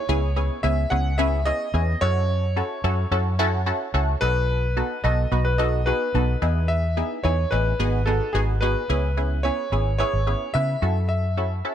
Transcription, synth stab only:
0.09 B3 C#4 E4 G#4
0.36 B3 C#4 E4 G#4
0.64 B3 C#4 E4 G#4
0.91 B3 C#4 E4 G#4
1.18 B3 C#4 E4 G#4
1.46 B3 C#4 E4 G#4
1.74 B3 C#4 E4 G#4
2.02 C#4 E4 F#4 A4
2.56 C#4 E4 F#4 A4
2.84 C#4 E4 F#4 A4
3.12 C#4 E4 F#4 A4
3.39 C#4 E4 F#4 A4
3.66 C#4 E4 F#4 A4
3.94 C#4 E4 F#4 A4
4.21 B3 D#4 F#4 A4
4.77 B3 D#4 F#4 A4
5.04 B3 D#4 F#4 A4
5.32 B3 D#4 F#4 B4
5.59 B3 D#4 F#4 A4
5.87 B3 D#4 F#4 G#4
6.14 B3 D#4 F#4 A4
6.42 B3 D#4 E4 G#4
6.97 B3 D#4 E4 G#4
7.24 B3 D#4 E4 G#4
7.52 B3 D#4 E4 G#4
7.79 B3 D#4 F#4 G#4
8.07 B3 D#4 F#4 G#4
8.35 B3 D#4 F#4 G#4
8.62 B3 D#4 F#4 G#4
8.89 B3 C#4 E4 G#4
9.17 B3 C#4 E4 G#4
9.44 B3 C#4 E4 G#4
9.72 B3 C#4 E4 G#4
9.99 B3 C#4 E4 G#4
10.27 B3 C#4 E4 G#4
10.54 B3 C#4 E4 B4
10.82 C#4 E4 F#4 A4
11.37 C#4 E4 F#4 A4
11.65 C#4 E4 F#4 A4

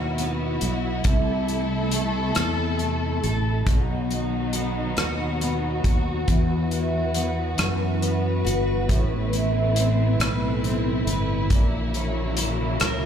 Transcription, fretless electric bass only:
Already playing: D#2
0.62 B1
1.04 C2
2.36 E2
3.24 A1
3.67 B1
4.97 D#2
5.85 D#2
6.29 E2
7.59 F#2
8.45 G1
8.89 A1
10.19 B1
11.07 G1
11.50 A#1
12.81 C#2

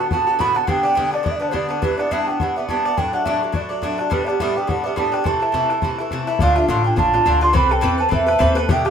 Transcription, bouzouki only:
0.00 D3 B3 F#4
0.11 A2 D3 B3 F#4
0.27 D3 B3 F#4
0.39 A2 D3 B3 F#4
0.55 D3 B3 F#4
0.67 G2 D3 B3 D4
0.83 D3 B3 D4
0.95 G2 D3 B3 D4
1.11 D3 B3 D4
1.23 G2 D3 B3 D4
1.39 D3 B3 D4
1.51 G2 D3 B3 D4
1.69 D3 B3 D4
1.82 G2 E3 B3 D4
1.97 E3 B3 D4
2.11 G2 E3 B3 D4
2.27 E3 B3 D4
2.40 G2 E3 B3 D4
2.56 E3 B3 D4
2.69 G2 E3 B3 D4
2.85 E3 B3 D4
2.97 A2 F#3 A3 D4
3.13 F#3 A3 D4
3.25 A2 F#3 A3 D4
3.41 F#3 A3 D4
3.52 A2 F#3 A3 D4
3.69 F#3 A3 D4
3.82 A2 F#3 A3 D4
3.98 F#3 A3 D4
4.10 A2 G3 B3 D4
4.26 G3 B3 D4
4.40 A2 G3 B3 D4
4.56 G3 B3 D4
4.67 A2 G3 B3 D4
4.84 G3 B3 D4
4.96 A2 G3 B3 D4
5.12 G3 B3 D4
5.24 C3 E3 A3 E4
5.40 E3 A3 E4
5.52 C3 E3 A3 E4
5.70 E3 A3 E4
5.82 C3 E3 A3 E4
5.99 E3 A3 E4
6.12 C3 E3 A3 E4
6.27 E3 A3 E4
6.40 A2 D3 D4 F4
6.56 D3 D4 F4
6.68 A2 D3 D4 F4
6.84 D3 D4 F4
6.96 A2 D3 D4 F4
7.14 D3 D4 F4
7.25 A2 D3 D4 F4
7.41 D3 D4 F4
7.53 E3 C4 A4 B4
7.69 C4 A4 B4
7.81 E3 C4 A4 B4
7.98 C4 A4 B4
8.09 E3 C4 A4 B4
8.26 C4 A4 B4
8.39 E3 C4 A4 B4
8.55 C4 A4 B4
8.69 B2 D3 E4 G4
8.85 E4 G4

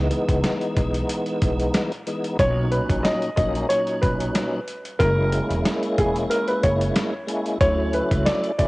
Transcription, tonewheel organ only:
0.09 E3 G#3 B3 D#4
2.07 E3 G#3 B3 D#4
2.39 A#2 F#3 C#4 D#4
3.36 F#3 A#3 C#4 D#4
3.69 A#2 F#3 C#4 D#4
4.99 G#3 A#3 C#4 E4
5.31 G#3 A#3 C#4 E4
7.27 G#3 A#3 C#4 E4
7.61 F#3 A3 C#4 E4
8.59 F#3 A3 C#4 E4

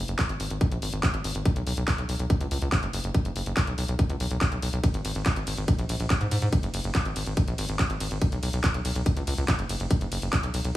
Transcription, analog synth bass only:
0.08 F#1
0.29 G#1
0.40 G#1
0.50 G#1
0.72 A#1
0.82 G#1
0.93 G#1
1.14 G#1
1.24 G#1
1.35 G#1
1.56 B1
1.67 B1
1.77 B1
1.98 B1
2.09 B1
2.19 B1
2.41 C#2
2.51 C#2
2.62 C#2
2.83 F#1
2.93 F#1
3.04 F#1
3.25 F#1
3.36 F#1
3.46 F#1
3.67 B1
3.78 B1
3.88 B1
4.10 C#2
4.20 B1
4.31 B1
4.52 B1
4.62 B1
4.73 B1
4.94 G#1
5.05 G#1
5.15 G#1
5.36 G#1
5.47 G#1
5.57 G#1
5.79 A#1
5.89 A#1
6.00 A#1
6.21 G#2
6.31 G#2
6.42 G#2
6.63 F#1
6.74 F#1
6.84 F#1
7.05 G#1
7.16 G#1
7.26 G#1
7.48 A#1
7.58 G#1
7.69 G#1
7.90 G#1
8.00 G#1
8.11 G#1
8.32 B1
8.43 B1
8.53 B1
8.74 B1
8.85 B1
8.95 B1
9.17 C#2
9.27 C#2
9.38 C#2
9.59 F#1
9.69 F#1
9.80 F#1
10.01 F#1
10.12 F#1
10.22 F#1
10.43 B1
10.54 B1
10.65 B1

